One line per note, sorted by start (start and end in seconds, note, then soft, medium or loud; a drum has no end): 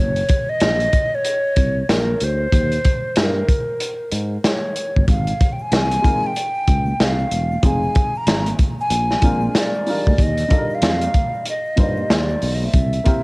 0.00 0.22 F#1 loud
0.00 0.51 C#5 loud
0.16 closed hi-hat soft
0.29 kick loud
0.29 closed hi-hat medium
0.49 1.16 D#5 loud
0.60 0.86 A#1 medium
0.60 snare loud
0.60 closed hi-hat medium
0.80 closed hi-hat soft
0.93 kick medium
0.93 closed hi-hat medium
1.15 1.90 C#5 loud
1.25 closed hi-hat medium
1.56 1.81 C2 medium
1.56 kick medium
1.56 closed hi-hat medium
1.89 2.14 A#1 medium
1.89 2.25 A#4 medium
1.89 snare loud
1.89 closed hi-hat medium
2.20 2.45 D2 medium
2.20 3.18 C5 loud
2.20 closed hi-hat medium
2.52 2.77 D#2 loud
2.52 kick loud
2.52 closed hi-hat medium
2.72 closed hi-hat soft
2.85 kick loud
2.85 closed hi-hat medium
3.16 3.41 G2 medium
3.16 snare loud
3.16 closed hi-hat medium
3.21 4.10 A#4 medium
3.49 kick medium
3.49 closed hi-hat medium
3.80 closed hi-hat medium
4.12 4.36 G#2 medium
4.12 closed hi-hat medium
4.44 5.05 C#5 medium
4.44 snare loud
4.44 closed hi-hat medium
4.76 closed hi-hat medium
4.96 5.06 G1 medium
4.96 kick medium
5.07 5.32 G#1 loud
5.07 5.54 F5 medium
5.07 kick loud
5.07 closed hi-hat medium
5.07 shaker medium
5.27 closed hi-hat soft
5.27 shaker soft
5.39 kick loud
5.39 closed hi-hat medium
5.39 shaker soft
5.53 5.64 G5 medium
5.59 6.28 G#5 loud
5.59 shaker soft
5.72 5.96 C2 loud
5.72 snare loud
5.72 closed hi-hat medium
5.72 low conga medium
5.72 shaker medium
5.91 closed hi-hat soft
5.91 high conga medium
5.91 shaker soft
6.02 6.27 G#3 medium
6.02 6.28 C4 medium
6.02 6.28 D#4 medium
6.02 6.29 F4 medium
6.02 6.29 A#4 medium
6.02 kick medium
6.02 closed hi-hat medium
6.02 high conga soft
6.02 low conga medium
6.02 shaker soft
6.23 7.05 G5 medium
6.23 shaker soft
6.35 closed hi-hat medium
6.35 shaker medium
6.54 shaker soft
6.67 6.92 C#2 medium
6.67 kick medium
6.67 closed hi-hat medium
6.67 shaker soft
6.86 high conga medium
6.86 shaker soft
6.99 7.24 C2 medium
6.99 snare loud
6.99 closed hi-hat medium
6.99 shaker medium
7.03 7.65 F5 medium
7.19 shaker soft
7.31 7.56 E1 medium
7.31 closed hi-hat medium
7.31 low conga medium
7.31 shaker soft
7.52 high conga medium
7.52 shaker soft
7.62 7.88 F1 loud
7.62 8.10 G#3 medium
7.62 8.11 C4 medium
7.62 8.11 D#4 medium
7.62 8.11 F4 medium
7.62 8.12 G#4 medium
7.62 kick medium
7.62 closed hi-hat medium
7.62 shaker soft
7.67 8.19 G#5 loud
7.83 shaker soft
7.95 kick loud
7.95 closed hi-hat medium
7.95 shaker soft
8.15 8.52 A#5 loud
8.15 shaker soft
8.27 8.51 G#1 medium
8.27 snare loud
8.27 closed hi-hat medium
8.27 low conga medium
8.27 shaker medium
8.46 closed hi-hat medium
8.46 high conga medium
8.46 shaker soft
8.59 kick medium
8.59 closed hi-hat medium
8.59 high conga soft
8.59 low conga medium
8.59 shaker soft
8.79 9.60 G#5 loud
8.79 shaker soft
8.90 9.15 A#1 loud
8.90 closed hi-hat medium
8.90 shaker medium
9.10 snare soft
9.10 shaker soft
9.21 9.47 A#1 medium
9.21 10.13 G#3 medium
9.21 10.13 C4 medium
9.21 9.85 D4 medium
9.21 9.87 F4 medium
9.21 9.88 A#4 medium
9.21 kick medium
9.21 closed hi-hat medium
9.21 shaker soft
9.41 high conga medium
9.41 shaker soft
9.55 10.24 D5 medium
9.55 snare loud
9.55 closed hi-hat medium
9.55 shaker medium
9.74 shaker soft
9.86 10.11 G3 medium
9.86 10.11 D4 medium
9.86 10.12 D#4 medium
9.86 10.12 F4 medium
9.86 10.12 A#4 medium
9.86 open hi-hat soft
9.86 low conga medium
9.86 shaker soft
10.07 10.16 D2 medium
10.07 kick medium
10.07 high conga medium
10.07 shaker soft
10.18 10.43 D#2 loud
10.18 10.76 D#5 loud
10.18 kick loud
10.18 closed hi-hat medium
10.18 shaker medium
10.37 closed hi-hat soft
10.37 shaker soft
10.48 11.40 G3 medium
10.48 11.40 D4 medium
10.48 11.41 D#4 medium
10.48 11.41 F4 medium
10.48 10.59 A4 medium
10.48 kick medium
10.48 closed hi-hat medium
10.48 shaker soft
10.58 11.45 A#4 medium
10.70 shaker soft
10.75 11.49 F5 medium
10.82 11.06 F2 medium
10.82 snare loud
10.82 closed hi-hat medium
10.82 low conga medium
10.82 shaker medium
11.01 closed hi-hat medium
11.01 high conga medium
11.01 shaker soft
11.14 kick medium
11.14 closed hi-hat medium
11.14 high conga soft
11.14 low conga medium
11.14 shaker soft
11.34 shaker soft
11.46 11.78 D#5 medium
11.46 closed hi-hat medium
11.46 shaker medium
11.65 shaker soft
11.76 12.03 G2 medium
11.76 12.68 G3 medium
11.76 12.68 A#3 medium
11.76 12.69 D#4 medium
11.76 12.69 F4 medium
11.76 12.70 C5 medium
11.76 kick medium
11.76 closed hi-hat medium
11.76 shaker soft
11.81 12.09 D#5 medium
11.97 high conga medium
11.97 shaker soft
12.10 12.34 D#2 medium
12.10 12.56 D5 medium
12.10 snare loud
12.10 closed hi-hat medium
12.10 shaker medium
12.30 shaker soft
12.42 12.67 B1 loud
12.42 open hi-hat medium
12.42 low conga medium
12.42 shaker soft
12.55 12.66 D#5 medium
12.62 13.23 E5 medium
12.62 high conga medium
12.62 shaker soft
12.73 12.98 C2 loud
12.73 kick loud
12.73 closed hi-hat medium
12.73 shaker medium
12.93 closed hi-hat soft
12.93 shaker soft
13.04 13.23 A#3 medium
13.04 13.23 C4 medium
13.04 13.23 E4 medium
13.04 13.23 G4 medium
13.04 13.23 A#4 medium
13.04 kick loud
13.04 closed hi-hat medium
13.04 shaker soft